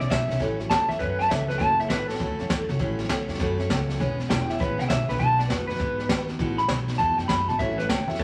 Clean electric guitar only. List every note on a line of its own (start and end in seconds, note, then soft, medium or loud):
0.10 0.39 E5 medium
0.70 0.88 A5 loud
0.89 0.99 E5 loud
0.99 1.18 B4 medium
1.19 1.29 A5 medium
1.29 1.48 E5 medium
1.48 1.59 B4 loud
1.58 1.78 A5 loud
1.80 1.90 E5 loud
1.89 2.07 B4 loud
2.07 2.66 A4 loud
4.30 4.50 G5 loud
4.50 4.60 E5 loud
4.60 4.79 B4 medium
4.79 4.88 G5 medium
4.89 5.08 E5 medium
5.09 5.19 B4 medium
5.19 5.38 A5 loud
5.39 5.47 D5 medium
5.47 5.66 B4 loud
5.67 6.26 B4 loud
6.58 6.69 B5 loud
6.98 7.18 A5 loud
7.18 7.28 G5 medium
7.28 7.48 B5 medium
7.48 7.59 A5 loud
7.59 7.78 E5 loud
7.78 7.88 B4 loud
7.89 8.08 G5 medium
8.08 8.18 E5 loud
8.19 8.24 A4 loud